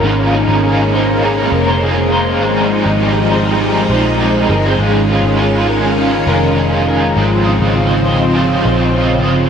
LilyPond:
<<
  \new Staff \with { instrumentName = "Clean electric guitar" } { \time 4/4 \key bes \dorian \tempo 4 = 101 des'8 ees'8 aes'8 c''8 aes'8 bes'16 c''16 aes'8 c''8 | aes8 ees'8 g'8 c''8 g'8 c''8 g'8 bes'16 c''16 | aes8 des'8 f'8 bes'8 f'8 bes'8 f'8 bes'8 | aes8 ees'8 f'8 c''8 f'8 c''8 f'8 c''8 | }
  \new Staff \with { instrumentName = "Overdriven electric guitar" } { \time 4/4 \key bes \dorian <aes, des f bes ees'>8 <f bes ees'>8 <des f bes ees'>8 <f bes ees'>8 <aes, des f bes ees'>8 <f bes ees'>8 <des f bes ees'>8 <f bes ees'>8 | <aes, ees g c' ees'>8 <g c' ees'>8 <ees g c' ees'>8 <g c' ees'>8 <aes, ees g c' ees'>8 <g c' ees'>8 <ees g c' ees'>8 <g c' ees'>8 | <aes, des aes des' f'>8 <aes des' f'>8 <des aes des' f'>8 <aes des' f'>8 <aes, des aes des' f'>8 <aes des' f'>8 <des aes des' f'>8 <aes des' f'>8 | <aes c' f' c'' ees''>8 <f' c'' ees''>8 <c' f' c'' ees''>8 <f' c'' ees''>8 <aes c' f' c'' ees''>8 <f' c'' ees''>8 <c' f' c'' ees''>8 <f' c'' ees''>8 | }
  \new Staff \with { instrumentName = "String machine" } { \time 4/4 \key bes \dorian <aes bes des'>1 | <f ees'>1 | <ees des'>1 | <des f c'>1 | }
  \new Staff \with { instrumentName = "Picked electric bass" } { \clef bass \time 4/4 \key bes \dorian aes,,8. aes,,4.~ aes,,16 f,,4. | aes,,8. aes,,4.~ aes,,16 bes,,4 g,,8 | aes,,8. aes,,4.~ aes,,16 f,,4. | aes,,8. aes,,4.~ aes,,16 bes,,4 g,,8 | }
>>